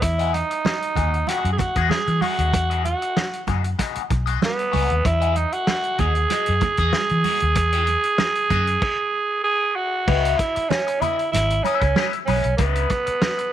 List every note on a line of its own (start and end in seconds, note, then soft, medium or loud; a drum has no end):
0.02 0.42 E2 medium
0.02 0.35 E4 loud
0.02 muted clean electric guitar stroke soft
0.02 kick loud
0.02 closed hi-hat loud
0.02 muted conga medium
0.19 0.33 F#4 medium
0.19 0.33 G#4 medium
0.19 0.34 D#5 medium
0.19 closed hi-hat medium
0.33 1.30 D#4 medium
0.33 muted clean electric guitar stroke soft
0.33 closed hi-hat medium
0.33 muted conga soft
0.51 muted clean electric guitar stroke soft
0.51 closed hi-hat medium
0.65 muted clean electric guitar stroke soft
0.65 snare loud
0.65 high conga medium
0.82 closed hi-hat medium
0.95 1.22 D#2 medium
0.95 1.14 F#4 medium
0.95 1.13 G#4 medium
0.95 1.11 D#5 medium
0.95 kick medium
0.95 closed hi-hat medium
0.95 low conga medium
1.13 muted clean electric guitar stroke medium
1.13 closed hi-hat soft
1.27 1.49 F#4 medium
1.27 1.52 F#4 medium
1.27 1.50 G#4 medium
1.27 1.50 D#5 medium
1.27 snare soft
1.27 closed hi-hat loud
1.27 muted conga medium
1.45 1.56 F#2 medium
1.45 closed hi-hat medium
1.53 1.61 G#4 medium
1.58 1.91 F#4 loud
1.58 muted clean electric guitar stroke soft
1.58 kick loud
1.58 closed hi-hat medium
1.58 muted conga medium
1.58 low conga medium
1.76 1.88 E2 medium
1.76 1.90 F#4 medium
1.76 1.91 G#4 medium
1.76 1.91 D#5 medium
1.76 kick medium
1.76 closed hi-hat medium
1.90 2.23 G#4 loud
1.90 muted clean electric guitar stroke soft
1.90 snare loud
1.90 high conga medium
2.07 2.20 E3 medium
2.07 muted clean electric guitar stroke soft
2.07 closed hi-hat soft
2.21 2.39 F#4 medium
2.21 2.84 F#4 loud
2.21 2.39 G#4 medium
2.21 2.37 D#5 medium
2.21 open hi-hat medium
2.21 high conga medium
2.39 2.54 D#2 medium
2.39 2.52 F#4 soft
2.39 2.53 G#4 medium
2.39 2.54 D#5 medium
2.39 closed hi-hat medium
2.53 2.93 E2 medium
2.53 kick loud
2.53 closed hi-hat loud
2.53 muted conga medium
2.70 2.84 F#4 medium
2.70 2.85 G#4 medium
2.70 2.85 D#5 medium
2.70 closed hi-hat medium
2.85 3.44 F#4 loud
2.85 muted clean electric guitar stroke soft
2.85 closed hi-hat medium
2.85 muted conga soft
3.02 muted clean electric guitar stroke soft
3.02 closed hi-hat soft
3.17 muted clean electric guitar stroke soft
3.17 snare loud
3.17 high conga medium
3.33 closed hi-hat medium
3.47 3.74 F#2 medium
3.47 3.65 F#4 medium
3.47 3.64 G#4 medium
3.47 3.63 D#5 medium
3.47 kick medium
3.47 closed hi-hat medium
3.47 low conga medium
3.64 muted clean electric guitar stroke soft
3.64 closed hi-hat medium
3.79 4.01 F#4 medium
3.79 4.01 G#4 medium
3.79 4.02 D#5 medium
3.79 kick medium
3.79 snare soft
3.79 closed hi-hat loud
3.79 muted conga soft
3.95 muted fingered electric bass stroke soft
3.95 closed hi-hat medium
4.10 4.36 B1 medium
4.10 muted clean electric guitar stroke soft
4.10 kick medium
4.10 closed hi-hat medium
4.10 muted conga soft
4.26 4.40 F#4 medium
4.26 4.41 G#4 medium
4.26 4.41 D#5 medium
4.26 closed hi-hat medium
4.41 5.08 B3 loud
4.41 muted clean electric guitar stroke soft
4.41 snare medium
4.41 high conga medium
4.59 closed hi-hat soft
4.72 4.88 C#2 medium
4.72 4.90 F#4 medium
4.72 4.89 G#4 medium
4.72 4.89 D#5 medium
4.72 open hi-hat medium
4.72 high conga medium
4.90 5.03 D#2 medium
4.90 muted clean electric guitar stroke soft
4.90 closed hi-hat medium
5.04 5.44 E2 loud
5.04 5.38 E4 loud
5.04 muted clean electric guitar stroke soft
5.04 kick loud
5.04 closed hi-hat loud
5.04 muted conga medium
5.20 5.35 F#4 medium
5.20 5.36 G#4 medium
5.20 5.36 D#5 medium
5.20 closed hi-hat medium
5.36 5.55 D#4 loud
5.36 muted clean electric guitar stroke soft
5.36 closed hi-hat medium
5.36 muted conga soft
5.52 6.02 F#4 loud
5.52 muted clean electric guitar stroke soft
5.52 closed hi-hat soft
5.67 muted clean electric guitar stroke soft
5.67 snare loud
5.67 high conga medium
5.84 closed hi-hat soft
5.98 6.25 D#2 medium
5.98 6.16 F#4 medium
5.98 6.16 G#4 medium
5.98 9.43 G#4 loud
5.98 6.15 D#5 medium
5.98 kick medium
5.98 closed hi-hat medium
5.98 low conga medium
6.15 muted clean electric guitar stroke medium
6.15 closed hi-hat soft
6.30 6.52 F#4 medium
6.30 6.53 G#4 medium
6.30 6.53 D#5 medium
6.30 snare soft
6.30 closed hi-hat loud
6.30 muted conga medium
6.46 6.60 F#2 medium
6.46 closed hi-hat medium
6.61 muted clean electric guitar stroke soft
6.61 kick loud
6.61 closed hi-hat medium
6.61 muted conga medium
6.61 low conga medium
6.77 6.90 E2 medium
6.77 6.92 F#4 medium
6.77 6.93 G#4 medium
6.77 6.93 D#5 medium
6.77 kick medium
6.77 closed hi-hat medium
6.93 muted clean electric guitar stroke soft
6.93 snare loud
6.93 high conga medium
7.09 7.23 E3 loud
7.09 closed hi-hat soft
7.24 7.42 F#4 medium
7.24 7.42 G#4 medium
7.24 7.41 D#5 medium
7.24 open hi-hat medium
7.24 high conga medium
7.40 7.56 D#2 medium
7.40 muted clean electric guitar stroke soft
7.40 closed hi-hat medium
7.55 7.96 E2 medium
7.55 muted clean electric guitar stroke soft
7.55 kick loud
7.55 closed hi-hat loud
7.55 muted conga medium
7.72 7.87 F#4 medium
7.72 7.88 G#4 medium
7.72 7.88 D#5 medium
7.72 closed hi-hat medium
7.87 muted clean electric guitar stroke soft
7.87 closed hi-hat medium
7.87 muted conga soft
8.03 muted clean electric guitar stroke soft
8.03 closed hi-hat medium
8.18 muted clean electric guitar stroke soft
8.18 snare loud
8.18 high conga medium
8.35 closed hi-hat medium
8.50 8.76 F#2 medium
8.50 8.68 F#4 medium
8.50 8.68 G#4 medium
8.50 8.67 D#5 medium
8.50 kick medium
8.50 closed hi-hat medium
8.50 low conga medium
8.67 muted clean electric guitar stroke soft
8.67 closed hi-hat medium
8.82 kick loud
8.82 crash loud
9.44 9.77 G#4 loud
9.76 10.39 F#4 loud
10.07 10.34 C#2 medium
10.07 10.36 E4 medium
10.07 10.37 B4 medium
10.07 10.37 D#5 loud
10.07 kick loud
10.07 crash loud
10.07 muted conga medium
10.25 closed hi-hat medium
10.38 10.71 E4 loud
10.38 kick loud
10.38 closed hi-hat medium
10.55 muted clean electric guitar stroke soft
10.55 muted fingered electric bass stroke soft
10.55 closed hi-hat medium
10.69 11.02 C#4 loud
10.69 snare loud
10.69 high conga medium
10.87 muted clean electric guitar stroke medium
10.87 closed hi-hat medium
11.01 11.31 E4 loud
11.01 11.24 E4 medium
11.01 11.19 B4 medium
11.01 11.18 D#5 medium
11.01 closed hi-hat medium
11.01 low conga medium
11.19 muted clean electric guitar stroke medium
11.19 closed hi-hat soft
11.32 11.59 G#1 loud
11.32 11.65 E4 loud
11.32 muted clean electric guitar stroke soft
11.32 snare soft
11.32 closed hi-hat loud
11.32 muted conga medium
11.50 muted clean electric guitar stroke soft
11.50 closed hi-hat medium
11.63 12.09 C#4 medium
11.63 11.87 E4 medium
11.63 11.81 B4 medium
11.63 11.81 E5 medium
11.63 closed hi-hat medium
11.63 muted conga medium
11.82 11.94 C#2 medium
11.82 muted clean electric guitar stroke soft
11.82 kick medium
11.82 closed hi-hat medium
11.96 12.18 E4 medium
11.96 12.13 B4 loud
11.96 12.12 D#5 loud
11.96 snare loud
11.96 high conga medium
12.13 muted clean electric guitar stroke soft
12.13 closed hi-hat soft
12.26 12.41 B1 loud
12.26 12.56 C#4 medium
12.26 12.45 E4 medium
12.26 12.44 B4 medium
12.26 open hi-hat medium
12.26 high conga medium
12.30 12.43 D#5 medium
12.44 12.56 B1 medium
12.44 muted clean electric guitar stroke medium
12.44 closed hi-hat medium
12.57 12.85 C#2 loud
12.57 13.53 B3 loud
12.57 12.88 E4 loud
12.57 12.88 B4 loud
12.57 12.89 D#5 loud
12.57 kick loud
12.57 closed hi-hat loud
12.57 muted conga medium
12.75 closed hi-hat medium
12.90 kick medium
12.90 closed hi-hat medium
12.90 muted conga soft
13.06 muted clean electric guitar stroke soft
13.06 muted fingered electric bass stroke soft
13.06 closed hi-hat medium
13.22 snare loud
13.22 high conga medium
13.38 muted clean electric guitar stroke soft
13.38 closed hi-hat medium